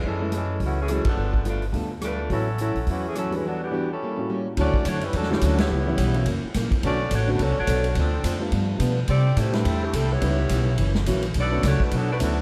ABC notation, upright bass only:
X:1
M:4/4
L:1/8
Q:"Swing" 1/4=212
K:A
V:1 name="Upright bass" clef=bass
F,,4 C,,3 z | =G,,,4 D,,4 | A,,,3 _B,,, E,,4 | z8 |
[K:D] D,, z F,,2 E,,2 D,,2 | C,,2 B,,,2 F,,, z ^A,,, z | B,,,2 A,,,2 (3C,, B,,, A,,, B,,,2 | D,,2 =F,,2 G,,2 B,,2 |
=C,2 A,,2 E,,2 =C,,2 | C,,2 B,,,2 F,,,2 ^A,,,2 | B,,,2 C,, z B,,,2 D,,2 |]